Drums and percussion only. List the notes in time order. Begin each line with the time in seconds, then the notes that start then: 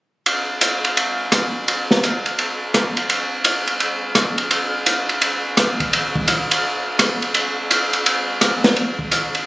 0.26 ride
0.61 hi-hat pedal, ride
0.85 ride
0.97 ride
1.32 cross-stick, hi-hat pedal, ride
1.68 ride
1.91 snare
2.03 hi-hat pedal, ride
2.26 ride
2.39 ride
2.74 cross-stick, hi-hat pedal, ride
2.97 ride
3.09 ride
3.44 hi-hat pedal, ride
3.67 ride
3.80 ride
4.15 cross-stick, hi-hat pedal, ride
4.38 ride
4.51 ride
4.86 hi-hat pedal, ride
5.09 ride
5.22 ride
5.57 cross-stick, hi-hat pedal, ride
5.80 kick, ride
5.93 ride
6.15 kick
6.28 hi-hat pedal, ride
6.51 ride
6.99 cross-stick, hi-hat pedal, ride
7.22 ride
7.34 ride
7.71 hi-hat pedal, ride
7.93 ride
8.06 ride
8.41 cross-stick, hi-hat pedal, ride
8.64 snare, ride
8.76 ride
8.99 kick
9.11 hi-hat pedal, ride
9.35 ride